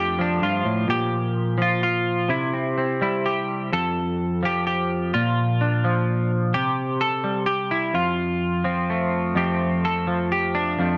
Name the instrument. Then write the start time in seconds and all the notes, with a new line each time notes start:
clean electric guitar
Already playing: F2 F3 A3 D4 G4
0.19 F3 D4
0.42 G2 F4
0.65 A2
0.88 A#2 G4
1.58 F3
1.62 F4
1.83 F4
2.29 C3 E4
2.54 C4
2.78 C4
3.01 G3 E4
3.26 G4
3.73 F2 A4
4.43 F3 G4
4.67 G4
5.14 A#2 F4
5.61 D4
5.84 F3
6.54 C3 G4
7.01 A4
7.24 G3
7.46 G4
7.71 E4
7.94 F2 F4
8.64 F3 C4
8.90 A3
9.35 F2 F3 A3 C4 G4
9.85 A4
10.07 F3
10.32 G4
10.55 D4
10.79 F2 F3 A3